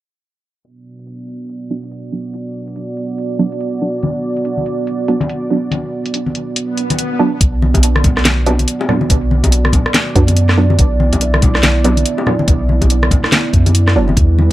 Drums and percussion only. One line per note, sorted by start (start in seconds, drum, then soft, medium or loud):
0.65 closed hi-hat medium
0.99 closed hi-hat soft
1.07 closed hi-hat medium
1.28 closed hi-hat soft
1.49 closed hi-hat medium
1.70 closed hi-hat soft
1.83 closed hi-hat medium
1.91 closed hi-hat medium
2.34 closed hi-hat medium
2.68 closed hi-hat soft
2.76 closed hi-hat medium
2.97 closed hi-hat soft
3.18 closed hi-hat medium
3.39 closed hi-hat soft
3.52 closed hi-hat soft
3.61 closed hi-hat medium
4.03 closed hi-hat medium
4.03 high conga medium
4.37 closed hi-hat soft
4.45 closed hi-hat medium
4.57 high conga medium
4.66 closed hi-hat soft
4.87 closed hi-hat medium
5.08 closed hi-hat soft
5.21 closed hi-hat soft
5.21 high conga medium
5.29 closed hi-hat medium
5.71 closed hi-hat medium
5.71 high conga medium
6.06 closed hi-hat soft
6.14 closed hi-hat medium
6.26 high conga medium
6.35 closed hi-hat soft
6.56 closed hi-hat medium
6.77 closed hi-hat soft
6.90 closed hi-hat soft
6.90 high conga medium
6.99 closed hi-hat medium
7.41 kick loud
7.41 closed hi-hat medium
7.62 high conga medium
7.74 kick medium
7.74 closed hi-hat medium
7.74 high bongo soft
7.83 closed hi-hat medium
7.96 cross-stick medium
7.96 high conga medium
8.04 kick medium
8.04 closed hi-hat medium
8.04 low conga medium
8.17 cross-stick medium
8.17 snare soft
8.25 snare loud
8.25 closed hi-hat medium
8.25 high conga medium
8.46 closed hi-hat soft
8.46 high bongo medium
8.59 closed hi-hat medium
8.59 high conga medium
8.68 closed hi-hat medium
8.81 high bongo medium
8.89 cross-stick medium
8.89 low conga medium
9.01 high conga medium
9.10 kick loud
9.10 closed hi-hat medium
9.31 high conga medium
9.44 kick medium
9.44 closed hi-hat medium
9.44 high bongo medium
9.52 closed hi-hat medium
9.65 cross-stick medium
9.65 high conga medium
9.73 kick loud
9.73 closed hi-hat medium
9.73 low conga medium
9.86 cross-stick medium
9.94 snare loud
9.94 closed hi-hat medium
9.94 high conga medium
10.15 kick loud
10.15 closed hi-hat medium
10.27 closed hi-hat medium
10.27 high bongo soft
10.27 high conga medium
10.37 closed hi-hat medium
10.49 cross-stick medium
10.49 snare soft
10.70 high bongo soft
10.70 high conga medium
10.79 kick loud
10.79 closed hi-hat medium
11.00 high conga medium
11.13 kick medium
11.13 closed hi-hat soft
11.13 high bongo medium
11.21 closed hi-hat medium
11.34 cross-stick medium
11.34 high conga medium
11.42 kick loud
11.42 closed hi-hat medium
11.42 low conga medium
11.55 cross-stick medium
11.55 snare soft
11.63 snare loud
11.63 closed hi-hat medium
11.63 high conga loud
11.84 closed hi-hat medium
11.84 high bongo medium
11.97 closed hi-hat medium
11.97 high conga medium
12.06 closed hi-hat medium
12.18 high bongo medium
12.26 cross-stick medium
12.26 low conga medium
12.39 high conga loud
12.48 kick loud
12.48 closed hi-hat medium
12.69 high conga medium
12.82 kick medium
12.82 closed hi-hat soft
12.82 high bongo soft
12.90 closed hi-hat medium
13.02 cross-stick medium
13.02 high conga medium
13.11 kick loud
13.11 closed hi-hat soft
13.11 low conga medium
13.24 cross-stick medium
13.24 snare soft
13.32 snare loud
13.32 closed hi-hat medium
13.32 high conga loud
13.53 kick loud
13.53 closed hi-hat soft
13.66 closed hi-hat medium
13.66 high bongo soft
13.66 high conga medium
13.75 closed hi-hat medium
13.88 cross-stick medium
13.88 snare soft
14.08 high bongo soft
14.08 high conga medium
14.17 kick loud
14.17 closed hi-hat medium
14.39 high conga medium